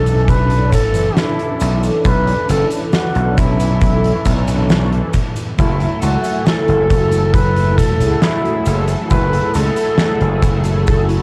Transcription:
0.00 0.73 B1 medium
0.00 0.89 E3 medium
0.00 0.89 C#4 medium
0.00 0.90 D4 medium
0.00 0.31 A4 loud
0.00 0.90 A4 medium
0.00 5.10 B4 medium
0.00 5.10 E5 medium
0.00 2.01 A5 medium
0.00 5.10 D6 medium
0.06 closed hi-hat medium
0.06 cabasa medium
0.28 0.73 B4 loud
0.28 kick loud
0.28 closed hi-hat medium
0.28 cabasa soft
0.50 closed hi-hat soft
0.73 0.95 A1 medium
0.73 1.19 A4 loud
0.73 kick medium
0.73 closed hi-hat loud
0.73 cabasa medium
0.93 1.08 F#1 medium
0.93 1.99 E3 medium
0.93 2.00 C#4 medium
0.93 2.00 D4 medium
0.93 2.01 A4 medium
0.93 closed hi-hat medium
0.93 cabasa medium
1.17 1.83 E4 medium
1.17 snare loud
1.17 closed hi-hat medium
1.17 cabasa soft
1.39 closed hi-hat soft
1.60 1.88 B1 medium
1.60 closed hi-hat loud
1.60 cabasa medium
1.83 closed hi-hat medium
1.83 cabasa soft
2.03 2.32 B1 loud
2.03 4.42 E3 medium
2.03 4.42 C#4 medium
2.03 4.43 D4 medium
2.03 4.43 A4 medium
2.03 2.46 B4 loud
2.03 5.11 B5 medium
2.03 kick loud
2.03 closed hi-hat medium
2.03 cabasa soft
2.27 closed hi-hat soft
2.49 2.63 F#1 loud
2.49 2.67 A4 loud
2.49 closed hi-hat loud
2.49 cabasa medium
2.70 closed hi-hat medium
2.70 cabasa medium
2.93 3.40 F#4 loud
2.93 snare loud
2.93 closed hi-hat medium
2.93 cabasa soft
3.15 4.12 B1 medium
3.15 closed hi-hat soft
3.38 4.71 E4 loud
3.38 kick loud
3.38 closed hi-hat loud
3.38 cabasa medium
3.60 closed hi-hat medium
3.60 cabasa medium
3.81 kick loud
3.81 closed hi-hat medium
3.81 cabasa soft
4.04 closed hi-hat medium
4.25 5.00 B1 medium
4.25 kick medium
4.25 closed hi-hat loud
4.25 cabasa medium
4.47 5.11 E3 medium
4.47 5.11 C#4 medium
4.47 5.11 D4 medium
4.47 5.12 A4 medium
4.47 closed hi-hat medium
4.47 cabasa medium
4.70 snare loud
4.70 closed hi-hat medium
4.70 cabasa soft
4.92 closed hi-hat soft
5.13 11.22 A3 medium
5.13 11.22 F#5 medium
5.13 8.63 G#5 medium
5.13 11.22 E6 medium
5.13 kick medium
5.13 closed hi-hat loud
5.13 cabasa medium
5.36 closed hi-hat medium
5.36 cabasa medium
5.57 5.86 F#1 loud
5.57 7.95 F#3 medium
5.57 7.95 A3 medium
5.57 7.96 E4 medium
5.57 6.00 E4 loud
5.57 7.96 A4 medium
5.57 kick loud
5.57 closed hi-hat medium
5.57 cabasa soft
5.80 closed hi-hat soft
6.02 6.16 C#2 medium
6.02 6.47 F#4 loud
6.02 closed hi-hat medium
6.02 cabasa medium
6.24 closed hi-hat medium
6.24 cabasa medium
6.46 7.35 A4 loud
6.46 snare loud
6.46 closed hi-hat medium
6.46 cabasa soft
6.68 7.78 F#1 medium
6.68 closed hi-hat soft
6.90 kick loud
6.90 closed hi-hat loud
6.90 cabasa medium
7.12 closed hi-hat medium
7.12 cabasa medium
7.33 7.79 B4 loud
7.33 kick loud
7.33 closed hi-hat medium
7.33 cabasa soft
7.56 closed hi-hat soft
7.78 8.02 E1 medium
7.78 8.24 A4 loud
7.78 kick medium
7.78 closed hi-hat medium
7.78 cabasa medium
7.99 8.14 C#2 medium
7.99 9.05 F#3 medium
7.99 9.05 A3 medium
7.99 9.06 E4 medium
7.99 9.06 G#4 medium
7.99 closed hi-hat medium
7.99 cabasa medium
8.22 8.89 E4 medium
8.22 snare loud
8.22 closed hi-hat medium
8.22 cabasa soft
8.45 closed hi-hat soft
8.66 8.94 F#1 medium
8.66 closed hi-hat medium
8.66 cabasa medium
8.88 closed hi-hat medium
8.88 cabasa medium
9.09 9.38 F#1 loud
9.09 11.22 F#3 medium
9.09 11.22 A3 medium
9.09 11.22 E4 medium
9.09 11.22 A4 medium
9.09 9.56 B4 loud
9.09 kick loud
9.09 closed hi-hat medium
9.09 cabasa soft
9.33 closed hi-hat soft
9.54 9.69 C#2 medium
9.54 10.86 A4 loud
9.54 closed hi-hat loud
9.54 cabasa medium
9.76 closed hi-hat medium
9.76 cabasa soft
9.98 snare loud
9.98 closed hi-hat medium
9.98 cabasa soft
10.21 11.18 F#1 medium
10.21 closed hi-hat soft
10.43 kick loud
10.43 closed hi-hat loud
10.43 cabasa medium
10.64 closed hi-hat medium
10.64 cabasa medium
10.87 11.03 A4 medium
10.87 kick loud
10.87 closed hi-hat medium
10.87 cabasa soft
11.09 closed hi-hat soft

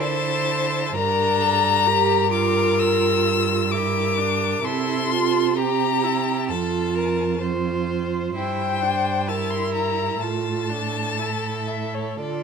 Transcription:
0.00 0.91 D3 medium
0.00 0.96 E4 medium
0.00 0.95 C5 medium
0.00 0.95 A5 medium
0.95 4.60 G2 medium
0.95 1.88 D4 medium
0.95 1.42 A#4 medium
0.95 2.30 A#5 loud
1.41 1.87 A4 medium
1.86 2.32 G4 medium
1.86 3.71 A#4 medium
2.33 3.73 F4 medium
2.33 2.82 D6 medium
2.80 3.73 E6 medium
3.72 4.19 E4 medium
3.72 4.65 A#4 medium
3.72 4.67 D6 medium
4.18 4.63 D4 medium
4.64 6.50 C3 medium
4.64 5.12 E4 medium
4.64 5.58 A4 medium
4.64 5.59 C6 medium
5.10 5.57 F4 medium
5.57 6.50 G4 medium
5.57 6.05 G4 medium
5.57 6.49 A#5 medium
6.04 6.51 E4 medium
6.49 8.36 F2 medium
6.49 7.41 F4 medium
6.49 6.96 A4 medium
6.49 7.41 A5 medium
6.95 7.42 A#4 medium
7.42 8.34 F4 medium
7.42 8.34 C5 soft
8.35 10.18 G2 medium
8.35 8.83 E4 medium
8.35 9.30 C5 soft
8.35 9.30 G5 medium
8.82 9.30 D4 medium
9.28 10.24 E4 medium
9.28 10.21 A#4 soft
9.28 9.52 A5 medium
9.51 9.74 C6 medium
9.75 10.23 A#5 medium
10.21 12.18 A2 soft
10.21 10.71 F4 soft
10.21 12.18 A4 soft
10.21 11.70 A5 medium
10.69 11.20 D4 soft
11.19 12.22 E4 soft
11.68 11.96 E5 medium
11.95 12.21 C#5 soft
12.21 12.43 D3 soft
12.21 12.43 F4 soft
12.21 12.43 A4 soft
12.21 12.43 D5 medium

